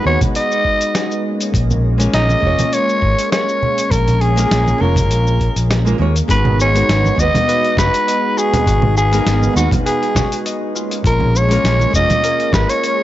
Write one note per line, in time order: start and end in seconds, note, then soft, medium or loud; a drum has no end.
0.00 6.25 G#3 medium
0.00 1.21 G#3 medium
0.00 1.21 B3 loud
0.00 1.22 B3 medium
0.00 1.21 D#4 medium
0.00 1.21 F#4 medium
0.05 0.16 D#2 medium
0.05 1.23 D#4 medium
0.05 1.23 F#4 medium
0.05 1.24 B4 medium
0.05 0.20 C#5 loud
0.21 kick medium
0.21 closed hi-hat soft
0.21 high conga medium
0.21 low conga medium
0.21 cabasa medium
0.35 1.21 D#5 loud
0.35 closed hi-hat medium
0.35 cabasa soft
0.52 cabasa soft
0.65 kick medium
0.81 closed hi-hat soft
0.81 cabasa medium
0.95 snare medium
0.95 closed hi-hat soft
0.95 cabasa medium
1.11 cabasa soft
1.24 6.25 A#3 medium
1.24 6.25 C#4 medium
1.41 closed hi-hat soft
1.41 cabasa medium
1.54 2.06 A#1 medium
1.54 kick loud
1.54 closed hi-hat soft
1.54 cabasa soft
1.70 low conga medium
1.70 cabasa soft
1.98 2.39 G#3 medium
1.98 2.39 A#3 medium
1.98 2.40 C#4 medium
1.98 2.40 F4 medium
1.98 2.41 A#4 medium
1.98 closed hi-hat soft
1.98 cabasa medium
2.13 2.34 A#1 medium
2.13 2.75 D#5 loud
2.13 snare medium
2.13 closed hi-hat medium
2.13 cabasa soft
2.29 high conga medium
2.29 cabasa soft
2.40 2.53 F1 medium
2.40 4.32 G#3 medium
2.40 4.33 A#3 medium
2.40 4.33 C#4 medium
2.40 kick medium
2.45 4.34 F4 medium
2.45 4.35 C#5 medium
2.59 closed hi-hat soft
2.59 high conga medium
2.59 low conga medium
2.59 cabasa medium
2.73 3.32 C#5 loud
2.73 closed hi-hat medium
2.73 cabasa soft
2.89 cabasa soft
3.02 3.13 G#1 medium
3.02 kick medium
3.18 closed hi-hat soft
3.18 cabasa medium
3.32 3.93 C#5 loud
3.32 snare medium
3.32 closed hi-hat medium
3.32 cabasa medium
3.49 cabasa soft
3.63 low conga medium
3.78 closed hi-hat soft
3.78 cabasa medium
3.91 4.43 A#1 loud
3.91 4.23 A#4 loud
3.91 kick loud
3.91 closed hi-hat medium
3.91 cabasa soft
4.08 closed hi-hat soft
4.08 low conga medium
4.08 cabasa soft
4.21 4.83 G#4 loud
4.21 closed hi-hat soft
4.36 4.77 G#3 medium
4.36 4.77 A#3 medium
4.36 4.78 C#4 medium
4.36 4.78 F4 medium
4.36 4.78 A#4 loud
4.36 closed hi-hat soft
4.36 cabasa medium
4.51 4.72 A#1 medium
4.51 snare loud
4.51 closed hi-hat medium
4.51 cabasa medium
4.67 high conga medium
4.67 cabasa soft
4.78 5.11 F1 loud
4.78 5.81 G#3 medium
4.78 5.82 A#3 medium
4.78 5.83 C#4 medium
4.78 5.70 A#4 medium
4.83 5.84 F4 medium
4.83 5.84 C#5 medium
4.96 kick loud
4.96 closed hi-hat soft
4.96 high conga medium
4.96 low conga medium
4.96 cabasa medium
5.11 5.48 A#1 medium
5.11 closed hi-hat medium
5.11 cabasa medium
5.27 cabasa soft
5.40 kick medium
5.40 closed hi-hat soft
5.56 5.92 A#1 medium
5.56 closed hi-hat soft
5.56 cabasa medium
5.71 snare medium
5.71 closed hi-hat medium
5.71 cabasa soft
5.85 5.96 G#3 medium
5.85 5.96 A#3 medium
5.85 5.97 C#4 medium
5.85 5.97 F4 medium
5.85 5.97 A#4 loud
5.85 cabasa soft
5.98 6.20 D#2 medium
5.98 6.12 G#3 medium
5.98 6.13 A#3 medium
5.98 6.13 C#4 medium
5.98 6.14 F4 medium
5.98 6.14 C#5 loud
6.16 closed hi-hat soft
6.16 cabasa medium
6.28 6.81 G#1 loud
6.28 6.68 G#3 medium
6.28 13.03 G#3 medium
6.28 6.68 B3 medium
6.28 10.71 B3 loud
6.28 6.69 D#4 loud
6.28 10.71 D#4 medium
6.28 8.65 F#4 medium
6.28 7.77 F#4 medium
6.28 6.69 F#4 medium
6.28 6.69 A#4 loud
6.28 6.58 B4 loud
6.28 kick loud
6.28 closed hi-hat medium
6.28 cabasa soft
6.45 low conga loud
6.60 7.21 C#5 loud
6.60 cabasa medium
6.74 7.14 G#3 medium
6.74 7.15 B3 medium
6.74 7.16 D#4 medium
6.74 7.16 F#4 medium
6.74 7.16 A#4 medium
6.74 closed hi-hat soft
6.74 cabasa soft
6.89 7.09 G#1 medium
6.89 snare medium
6.89 closed hi-hat medium
6.89 cabasa soft
7.05 high conga medium
7.05 cabasa soft
7.15 7.29 D#2 loud
7.15 9.07 G#3 medium
7.15 9.08 B3 medium
7.15 9.09 D#4 medium
7.15 kick medium
7.19 9.10 F#4 medium
7.19 9.10 B4 medium
7.19 7.78 D#5 loud
7.19 cabasa medium
7.35 closed hi-hat soft
7.35 high conga loud
7.35 low conga medium
7.35 cabasa soft
7.48 9.53 B4 medium
7.48 closed hi-hat medium
7.48 cabasa soft
7.65 closed hi-hat soft
7.77 7.88 F#1 loud
7.77 8.37 F#4 medium
7.77 8.40 B4 loud
7.77 kick medium
7.77 snare medium
7.77 cabasa medium
7.94 closed hi-hat soft
7.94 cabasa soft
8.08 9.86 D#5 medium
8.08 closed hi-hat medium
8.08 cabasa soft
8.37 8.66 F#4 medium
8.37 8.97 G#4 loud
8.37 cabasa medium
8.54 closed hi-hat soft
8.54 low conga medium
8.54 cabasa soft
8.66 9.19 G#1 medium
8.66 10.15 F#4 medium
8.66 10.73 F5 medium
8.66 kick loud
8.66 closed hi-hat medium
8.66 cabasa soft
8.82 low conga loud
8.97 9.53 G#4 loud
8.97 cabasa medium
9.11 9.52 G#3 loud
9.11 9.53 B3 medium
9.11 9.53 D#4 medium
9.11 9.53 F#4 medium
9.11 9.54 A#4 loud
9.11 closed hi-hat soft
9.11 cabasa soft
9.26 9.47 G#1 medium
9.26 snare medium
9.26 closed hi-hat medium
9.26 cabasa soft
9.43 high conga medium
9.43 cabasa soft
9.53 9.67 D#2 loud
9.53 10.72 G#3 medium
9.53 10.72 B3 medium
9.53 10.73 D#4 medium
9.53 9.70 F#4 medium
9.53 cabasa medium
9.57 10.74 F#4 medium
9.57 10.75 B4 medium
9.71 kick loud
9.71 closed hi-hat soft
9.71 high conga loud
9.71 low conga medium
9.71 cabasa soft
9.85 10.42 G#4 medium
9.85 11.90 B4 medium
9.85 closed hi-hat medium
9.85 cabasa soft
10.03 closed hi-hat soft
10.15 10.81 F#4 medium
10.15 kick medium
10.15 snare medium
10.15 low conga loud
10.15 cabasa medium
10.32 closed hi-hat soft
10.32 cabasa soft
10.45 12.24 D#5 medium
10.45 closed hi-hat medium
10.45 cabasa soft
10.75 13.03 A#3 medium
10.75 13.03 C#4 medium
10.75 11.04 F4 medium
10.75 cabasa medium
10.91 closed hi-hat soft
10.91 cabasa soft
11.04 11.56 A#1 loud
11.04 12.53 F4 medium
11.04 11.38 A#4 medium
11.04 kick loud
11.04 closed hi-hat soft
11.04 cabasa soft
11.20 low conga medium
11.36 11.95 C#5 loud
11.36 cabasa medium
11.48 11.90 G#3 medium
11.48 11.90 A#3 medium
11.48 11.91 C#4 medium
11.48 11.91 F4 medium
11.48 11.91 A#4 loud
11.48 closed hi-hat soft
11.48 cabasa soft
11.64 11.84 A#1 medium
11.64 snare medium
11.64 closed hi-hat medium
11.64 cabasa soft
11.80 high conga medium
11.80 cabasa soft
11.91 12.04 F1 medium
11.91 13.03 G#3 medium
11.91 13.03 A#3 medium
11.91 13.03 C#4 medium
11.91 kick medium
11.91 cabasa medium
11.96 13.03 F4 medium
11.96 13.03 C#5 loud
11.96 12.55 D#5 loud
12.10 closed hi-hat soft
12.10 high conga medium
12.10 low conga medium
12.10 cabasa soft
12.23 13.03 A#4 medium
12.23 closed hi-hat medium
12.23 cabasa soft
12.40 closed hi-hat soft
12.53 12.63 G#1 loud
12.53 13.03 F4 medium
12.53 12.71 B4 loud
12.53 kick loud
12.53 snare medium
12.53 cabasa medium
12.69 13.03 C#5 loud
12.69 closed hi-hat soft
12.69 cabasa soft
12.83 13.03 C#5 medium
12.83 closed hi-hat soft
12.83 cabasa soft